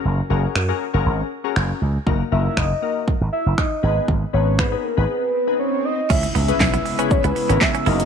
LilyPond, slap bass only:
\new Staff \with { instrumentName = "Slap bass" } { \clef bass \time 4/4 \key cis \dorian \tempo 4 = 119 fis,,8 fis,,8 fis,8 r16 fis,,16 gis,,8 r8 fis,,8 cis,8 | fis,,8 fis,,8 fis,,8 r8. gis,,16 r16 fis,,16 r8 gis,,8 | gis,,8 gis,,8 gis,8 r16 gis,,16 r2 | cis,8 cis,8 b,,8 r8. cis,16 r16 gis,,16 r8 fis,,8 | }